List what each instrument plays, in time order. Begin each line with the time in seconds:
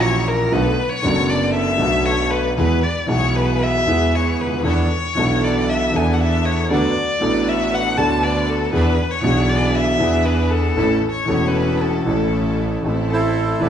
Already playing: double bass A#1, grand piano A#1 A#2 E3 A#3 C#4 F#4, string section A#3 E4 F#4
0.01 violin C#5
0.28 violin A#4
0.52 double bass B1, grand piano B1 B2 D3 A3 B3 F#4, string section B3 D4 A4, violin B4
0.89 violin C#5
1.02 double bass F#1, grand piano F#1 F#2 D3 A3 B3 F#4, string section B3 D4 A4
1.29 violin D5
1.54 violin E5
1.78 grand piano B1 B2 D3 A3 B3, double bass B1, string section B3 D4 A4
1.82 grand piano F#4
2.05 violin C#5
2.30 violin B4
2.56 double bass E2, grand piano E2 E3 G#3 B3 G#4, string section B3 E4 G#4, violin B4
2.83 violin D5
3.06 double bass B1, grand piano B1 B2 E3 G#3 B3 G#4, string section B3 E4 G#4, violin C#5
3.36 violin B4
3.63 violin E5
3.85 double bass E2, grand piano E2 E3 G#3 B3, string section B3 E4 G#4
3.89 grand piano G#4
4.15 violin C#5
4.39 double bass D2, violin B4
4.45 grand piano C#2
4.52 grand piano D2
4.58 grand piano D#2
4.64 grand piano E2 E3 B3 D4 A4, double bass E2, string section D4 E4 A4, violin C#5
5.15 grand piano B1 B2 E3 B3 D4, double bass B1, string section D4 E4 A4
5.19 grand piano A4
5.44 violin D5
5.69 violin E5
5.93 grand piano E2 E3 B3 D4 A4, double bass E2, string section D4 E4 A4, violin G#5
6.13 violin F#5
6.20 violin E5
6.45 violin C#5
6.70 grand piano D2 D3 F#3 B3 D4 A4, double bass D2, string section D4 F#4 B4, violin D5
7.20 grand piano A1 A2 F#3 B3 D4 A4, double bass A1, string section D4 F#4 B4
7.48 violin E5
7.74 violin F#5
7.96 grand piano D2 D3 F#3 B3 D4 A4, double bass D2, string section D4 F#4 B4, violin A5
8.23 violin D5
8.49 violin A4
8.73 grand piano E2 E3 B3 D4 G#4, double bass E2, string section D4 E4 G#4, violin B4
9.11 violin C#5
9.21 grand piano B1 B2 E3 B3 D4, double bass B1, string section D4 E4
9.25 string section G#4, grand piano G#4
9.49 violin D5
9.75 violin E5
9.98 grand piano E2 E3 B3 D4, double bass E2, string section D4 E4 G#4
10.02 grand piano G#4
10.26 violin B4
10.50 violin A4
10.76 double bass A1, grand piano A1 A2 E3 A3 C#4 A4, string section C#4 E4 A4
11.11 violin C#5
11.25 grand piano E1 E2 E3 A3 C#4 A4, double bass E1, string section C#4 E4 A4
11.47 violin B4
11.81 violin A4
12.04 double bass A1, grand piano A1 A2 E3 A3 C#4 A4, string section C#4 E4 A4
12.82 grand piano A1 A2 E3 A3 C4 A4, double bass A1, string section C4 E4 A4
13.09 violin A4, bandoneon A4 C5
13.14 bandoneon E4
13.60 double bass E1, grand piano E1 E2 E3 A3 C4, string section C4 E4 A4, violin B4, bandoneon D5
13.64 grand piano A4